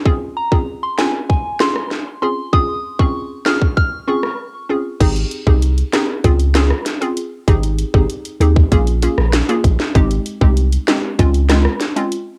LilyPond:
<<
  \new Staff \with { instrumentName = "Synth bell" } { \time 4/4 \key des \lydian \tempo 4 = 97 r8 bes''16 r8 c'''16 aes''16 r16 aes''16 r16 c'''16 r8. c'''16 r16 | ees'''8 r16 des'''16 r8 f'''16 r16 f'''16 r16 des'''16 r4 r16 | r1 | r1 |
r1 | }
  \new Staff \with { instrumentName = "Synth pluck" } { \time 4/4 \key des \lydian <c' des' f' aes'>16 r8 <c' des' f' aes'>8. <c' des' f' aes'>8 r8 <c' des' f' aes'>16 r8. <c' des' f' aes'>16 r16 | <c' des' f' aes'>16 r8 <c' des' f' aes'>8. <c' des' f' aes'>8 r8 <c' des' f' aes'>16 r8. <c' des' f' aes'>16 r16 | <c' ees' g' aes'>8. <c' ees' g' aes'>8. <c' ees' g' aes'>8 <c' des' f' aes'>8 <c' des' f' aes'>16 r8 <c' des' f' aes'>16 r8 | <c' ees' g' aes'>8. <c' ees' g' aes'>8. <c' ees' g' aes'>8 <bes des' f' aes'>8 <bes des' f' aes'>16 r8 <bes des' f' aes'>16 r8 |
<aes c' ees' g'>8. <aes c' ees' g'>8. <aes c' ees' g'>8 <aes c' des' f'>8 <aes c' des' f'>16 r8 <aes c' des' f'>16 r8 | }
  \new Staff \with { instrumentName = "Sub bass" } { \clef bass \time 4/4 \key des \lydian r1 | r1 | aes,,8 r16 c,8. r8 des,4 r4 | aes,,8. aes,,16 r8 ees,8 bes,,8. bes,,8 r16 bes,,16 r16 |
aes,,8 r16 c,8. r8 des,4 r4 | }
  \new DrumStaff \with { instrumentName = "Drums" } \drummode { \time 4/4 bd8. bd16 r8 <ss sn>8 bd8 <ss sn>16 ss16 sn4 | bd8. bd16 r8 <ss sn>16 bd16 bd8. ss16 r4 | <cymc hh bd>16 hh16 hh16 bd16 hh16 hh16 <hh ss sn>8 <hh bd>16 hh16 <hh ss sn>16 ss16 <hh sn>16 hh16 hh8 | <hh bd>16 hh16 hh16 bd16 hh16 hh16 hh16 bd16 <hh bd>16 hh16 hh16 ss16 <hh ss sn>16 hh16 <hh bd>16 sn16 |
<hh bd>16 hh16 hh16 bd16 hh16 hh16 <hh ss sn>8 <hh bd>16 hh16 <hh ss sn>16 ss16 <hh sn>16 hh16 hh8 | }
>>